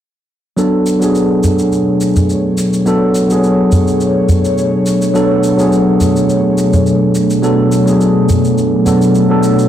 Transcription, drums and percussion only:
0.58 shaker
0.87 shaker
1.02 shaker
1.15 shaker
1.44 udu, shaker
1.59 shaker
1.72 shaker
2.01 shaker
2.16 udu, shaker
2.30 shaker
2.58 shaker
2.73 shaker
2.86 shaker
3.15 shaker
3.30 shaker
3.44 shaker
3.72 udu, shaker
3.87 shaker
4.01 shaker
4.29 udu, shaker
4.45 shaker
4.58 shaker
4.86 shaker
5.02 shaker
5.15 shaker
5.44 shaker
5.59 shaker
5.72 shaker
6.01 udu, shaker
6.16 shaker
6.29 shaker
6.58 shaker
6.73 udu, shaker
6.86 shaker
7.15 shaker
7.30 shaker
7.43 shaker
7.72 shaker
7.88 shaker
8.01 shaker
8.29 udu, shaker
8.45 shaker
8.58 shaker
8.86 udu, shaker
9.02 shaker
9.15 shaker
9.43 shaker
9.59 shaker

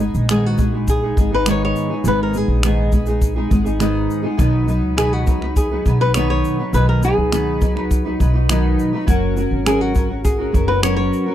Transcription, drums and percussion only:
0.15 shaker
0.29 finger snap, shaker
0.58 kick, shaker
0.87 kick, shaker
1.17 kick, shaker
1.46 finger snap, shaker
1.76 shaker
2.04 shaker
2.33 shaker
2.63 finger snap, shaker
2.92 kick, shaker
3.06 shaker
3.21 kick, shaker
3.51 kick, shaker
3.66 shaker
3.80 finger snap, shaker
4.10 shaker
4.39 kick, shaker
4.68 shaker
4.98 finger snap, shaker
5.27 kick, shaker
5.42 finger snap
5.56 kick, shaker
5.86 kick, shaker
6.14 finger snap, shaker
6.44 shaker
6.73 shaker
7.02 shaker
7.32 finger snap, shaker
7.61 kick, shaker
7.77 finger snap
7.91 kick, shaker
8.20 kick, shaker
8.49 finger snap, shaker
8.79 shaker
9.08 kick, shaker
9.37 shaker
9.66 finger snap, shaker
9.95 kick, shaker
10.25 kick, shaker
10.54 kick, shaker
10.83 finger snap, shaker
11.13 shaker

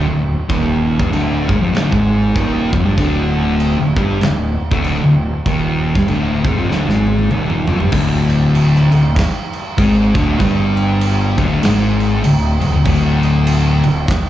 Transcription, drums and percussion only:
0.50 kick, crash
1.00 kick
1.13 crash
1.49 kick
1.75 snare, crash
1.92 kick
2.36 kick, crash
2.73 kick
2.98 kick, crash
3.60 crash
3.97 kick
4.21 snare, crash
4.71 kick
4.84 crash
5.46 kick, crash
5.95 kick, snare
6.08 crash
6.45 kick
6.71 snare
6.90 snare
7.07 high tom
7.19 high tom
7.31 mid tom
7.50 mid tom
7.67 floor tom
7.80 floor tom
7.92 kick, crash
8.30 crash
8.55 crash
8.76 snare
8.92 crash
9.16 kick, snare, crash
9.53 crash
9.78 kick, crash
10.15 kick, crash
10.40 kick, crash
10.77 crash
11.01 crash
11.38 kick, crash
11.63 snare, crash
12.00 crash
12.24 crash
12.61 crash
12.86 kick, crash
13.23 crash
13.47 crash
13.84 crash
14.08 kick, snare, crash

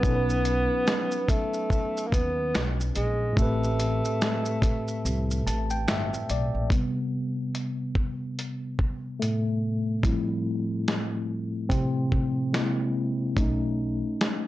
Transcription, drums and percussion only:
0.03 kick, shaker
0.30 shaker
0.45 closed hi-hat, shaker
0.87 finger snap, snare, shaker
1.11 shaker
1.28 kick, closed hi-hat, shaker
1.54 shaker
1.70 kick, shaker
1.97 shaker
2.12 kick, closed hi-hat, shaker
2.55 finger snap, snare, shaker
2.81 shaker
2.96 closed hi-hat, shaker
3.37 kick, shaker
3.64 shaker
3.80 closed hi-hat, shaker
4.05 shaker
4.22 finger snap, snare, shaker
4.45 shaker
4.62 kick, closed hi-hat, shaker
4.88 shaker
5.06 shaker
5.31 shaker
5.47 closed hi-hat, shaker
5.70 shaker
5.88 finger snap, snare, shaker
6.14 shaker
6.30 closed hi-hat, shaker
6.70 kick, closed hi-hat
7.55 closed hi-hat
7.95 kick
8.39 closed hi-hat
8.79 kick
9.22 closed hi-hat
10.03 kick, closed hi-hat
10.88 snare, closed hi-hat
11.70 kick, closed hi-hat
12.12 kick
12.54 snare, closed hi-hat
13.37 kick, closed hi-hat
14.21 snare, closed hi-hat

